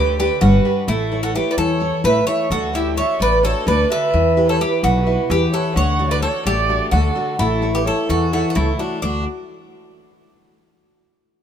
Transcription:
Already playing: upright bass D2, steel-string acoustic guitar D3, bouzouki G4, violin B4
0.19 steel-string acoustic guitar D4 G4 B4, bouzouki G4, violin B4
0.41 upright bass G1, steel-string acoustic guitar G3, bouzouki F#4, violin B4
0.65 steel-string acoustic guitar D4 G4 B4
0.88 upright bass A1, steel-string acoustic guitar A3, bouzouki E4, violin A4
1.12 steel-string acoustic guitar E4 A4 C#5
1.23 bouzouki F#4, violin A4
1.35 steel-string acoustic guitar E4 A4 C#5, bouzouki G4, violin B4
1.51 bouzouki B4, violin D5
1.57 upright bass E2, steel-string acoustic guitar E3, bouzouki A4, violin C#5
1.80 steel-string acoustic guitar E4 A4 C#5
2.04 upright bass A1, steel-string acoustic guitar A3, bouzouki B4, violin E5
2.27 steel-string acoustic guitar E4 A4 C#5, bouzouki C#5, violin E5
2.50 upright bass D2, steel-string acoustic guitar D3, bouzouki F#4, violin A4
2.73 steel-string acoustic guitar D4 F#4 A4, bouzouki E4, violin G4
2.97 steel-string acoustic guitar D4 F#4 A4, bouzouki C#5, violin E5
3.20 upright bass A1, steel-string acoustic guitar A3, bouzouki B4, violin D5
3.43 steel-string acoustic guitar D4 F#4 A4, bouzouki A4, violin C#5
3.66 upright bass D2, steel-string acoustic guitar D3, bouzouki B4, violin D5
3.90 steel-string acoustic guitar D4 F#4 A4, bouzouki B4, violin E5
4.13 upright bass E2, steel-string acoustic guitar E3
4.37 steel-string acoustic guitar E4 G4 B4
4.49 bouzouki A4, violin C#5
4.60 steel-string acoustic guitar E4 G4 B4, bouzouki G4, violin B4
4.83 upright bass B1, steel-string acoustic guitar B2, bouzouki F#4, violin B4
5.07 steel-string acoustic guitar E4 G4 B4
5.30 upright bass E2, steel-string acoustic guitar E3, bouzouki G4, violin B4
5.52 steel-string acoustic guitar E4 G4 B4, bouzouki A4, violin C#5
5.75 upright bass D2, steel-string acoustic guitar D3, bouzouki C#5, violin F#5
5.99 steel-string acoustic guitar D4 F#4 A4
6.10 bouzouki B4, violin D5
6.22 steel-string acoustic guitar D4 F#4 A4, bouzouki A4, violin C#5
6.45 upright bass A1, steel-string acoustic guitar A3, bouzouki G4, violin D5
6.69 steel-string acoustic guitar D4 F#4 A4
6.91 upright bass D2, steel-string acoustic guitar D3, bouzouki F#4, violin A4
7.15 steel-string acoustic guitar D4 F#4 A4
7.39 upright bass A1, steel-string acoustic guitar A3, bouzouki E4, violin A4
7.62 steel-string acoustic guitar E4 A4 C#5
7.74 bouzouki G4, violin B4
7.86 steel-string acoustic guitar E4 A4 C#5, bouzouki A4, violin C#5
8.09 upright bass E2, steel-string acoustic guitar E3, bouzouki F#4, violin A4
8.32 steel-string acoustic guitar E4 A4 C#5, bouzouki F#4, violin A4
8.50 bouzouki F#4, violin A4
8.55 upright bass C#2, steel-string acoustic guitar A3, bouzouki E4, violin A4
8.79 bouzouki D4, steel-string acoustic guitar E4 A4 C#5, violin F#4
9.02 upright bass D2, steel-string acoustic guitar D3 A3, bouzouki D4, violin F#4

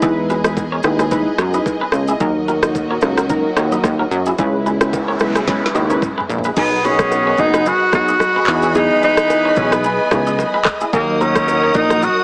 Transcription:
Already playing: string section B2 G#3 G#4 D#5
0.02 analog synth bass E2, synth keys G#3 D#4 E4 B4, clean electric guitar E4 G#4, kick, low conga, shaker
0.30 clean electric guitar G#4 B4, low bongo, shaker
0.44 synth keys G#3 D#4 E4 B4, cross-stick, low bongo, shaker
0.57 kick, high bongo, shaker
0.72 clean electric guitar A#4 C#5
0.83 analog synth bass D#2, synth keys G#3 D#4 E4 B4, cross-stick, high bongo, shaker
0.99 clean electric guitar G#4 B4, cross-stick, low bongo, shaker
1.11 synth keys G#3 D#4 E4 B4, clean electric guitar G#4 B4, kick, low conga, shaker
1.38 analog synth bass F#2, clean electric guitar A#4 C#5, cross-stick, low bongo, shaker
1.54 synth keys G#3 D#4 E4 B4, clean electric guitar B4 D#5, shaker
1.66 kick, high bongo, low conga, shaker
1.81 clean electric guitar G#4 B4
1.92 analog synth bass C#2, cross-stick, shaker
2.08 clean electric guitar E4 G#4, shaker
2.20 analog synth bass D#2, string section A#2 D#3 F#3 F#4, synth keys F#3 A#3 D#4 A#4, clean electric guitar D#4 G#4, kick, low conga, shaker
2.48 clean electric guitar F#4 A#4, low bongo, shaker
2.62 synth keys F#3 A#3 D#4 A#4, cross-stick, low bongo, shaker
2.75 kick, high bongo, shaker
2.91 clean electric guitar A#4 C#5
3.01 analog synth bass C#2, synth keys F#3 A#3 D#4 A#4, cross-stick, high bongo, shaker
3.18 clean electric guitar F#4 A#4, cross-stick, low bongo, shaker
3.29 synth keys F#3 A#3 D#4 A#4, clean electric guitar F#4 A#4, kick, low conga, shaker
3.57 analog synth bass D#2, clean electric guitar A#4 C#5, cross-stick, low bongo, shaker
3.72 synth keys F#3 A#3 D#4 A#4, clean electric guitar B4 D#5, shaker
3.84 analog synth bass D#2, kick, cross-stick, high bongo, low conga, shaker
3.99 clean electric guitar F#4 A#4
4.11 analog synth bass F#2, shaker
4.26 clean electric guitar E4 G#4, shaker
4.38 analog synth bass C#2, string section C#3 E3 G#3 B3 E4, synth keys G#3 C#4 E4 B4, clean electric guitar E4 G#4, kick, noise sweep, low conga, shaker
4.66 clean electric guitar G#4 B4, low bongo, shaker
4.81 synth keys G#3 C#4 E4 B4, cross-stick, low bongo, shaker
4.93 kick, high bongo, shaker
5.08 clean electric guitar A#4 C#5
5.19 analog synth bass B1, synth keys G#3 C#4 E4 B4, cross-stick, high bongo, shaker
5.35 clean electric guitar G#4 B4, cross-stick, low bongo, shaker
5.47 synth keys G#3 C#4 E4 B4, clean electric guitar G#4 B4, kick, snare, low conga, shaker
5.66 snare
5.75 analog synth bass D#2, clean electric guitar B4 D#5, low bongo, shaker
5.90 synth keys G#3 C#4 E4 B4, clean electric guitar A#4 C#5, shaker
6.02 kick, mid tom, high bongo, low conga, shaker
6.18 clean electric guitar G#4 B4, floor tom
6.29 analog synth bass A#1, shaker
6.38 floor tom
6.44 clean electric guitar G#4 B4, shaker
6.57 analog synth bass B1, horn section D#3 B3 G#4, synth keys F#3 B3 D#4 G#4, tenor saxophone B3, clean electric guitar D#4 G#4, string section G#4 D#5 F#5 B5, kick, crash, low conga, shaker
6.84 tenor saxophone C#4, clean electric guitar G#4 B4, low bongo, shaker
6.99 kick, cross-stick, shaker
7.12 high bongo, shaker
7.27 clean electric guitar A#4 C#5
7.38 analog synth bass F#1, synth keys F#3 B3 D#4 G#4, tenor saxophone D#4, kick, high bongo, shaker
7.54 clean electric guitar G#4 B4, cross-stick, low bongo, shaker
7.66 tenor saxophone F#4, clean electric guitar G#4 B4, low conga, shaker
7.93 synth keys F#3 B3 D#4 G#4, tenor saxophone F#4, clean electric guitar A#4 C#5, kick, cross-stick, low bongo, shaker
8.08 clean electric guitar B4 D#5, shaker
8.20 cross-stick, high bongo, low conga, shaker
8.36 clean electric guitar G#4 B4
8.47 analog synth bass E2, synth keys E3 B3 D#4 G#4, horn section E3 G#3 B4, string section G#4 G#5, clap, shaker
8.62 clean electric guitar E4 G#4, shaker
8.75 synth keys E3 B3 D#4 G#4, tenor saxophone D#4, clean electric guitar E4 G#4, low conga, shaker
9.03 tenor saxophone D#4, clean electric guitar G#4 B4, low bongo, shaker
9.17 cross-stick, shaker
9.30 high bongo, shaker
9.45 clean electric guitar A#4 C#5
9.56 analog synth bass B1, synth keys E3 B3 D#4 G#4, tenor saxophone C#4, kick, high bongo, shaker
9.72 tenor saxophone B3, clean electric guitar G#4 B4, cross-stick, low bongo, shaker
9.84 clean electric guitar G#4 B4, low conga, shaker
10.11 analog synth bass C#2, synth keys E3 B3 D#4 G#4, clean electric guitar A#4 C#5, kick, cross-stick, low bongo, shaker
10.27 clean electric guitar B4 D#5, shaker
10.39 high bongo, low conga, shaker
10.54 clean electric guitar G#4 B4
10.65 kick, cross-stick, clap, shaker
10.81 clean electric guitar E4 G#4, shaker
10.93 analog synth bass D#2, synth keys F#3 A#3 D#4 A#4, horn section F#3 D#4 A#4, tenor saxophone A#3, clean electric guitar D#4 G#4, string section A#4 F#5 D#6, kick, low conga, shaker
11.21 tenor saxophone C#4, clean electric guitar F#4 A#4, low bongo, shaker
11.36 kick, cross-stick, shaker
11.48 high bongo, shaker
11.63 clean electric guitar A#4 C#5
11.74 analog synth bass A#1, synth keys F#3 A#3 D#4 A#4, tenor saxophone D#4, kick, high bongo, shaker
11.90 clean electric guitar F#4 A#4, cross-stick, low bongo, shaker
12.02 clean electric guitar F#4 A#4, tenor saxophone F#4, low conga, shaker

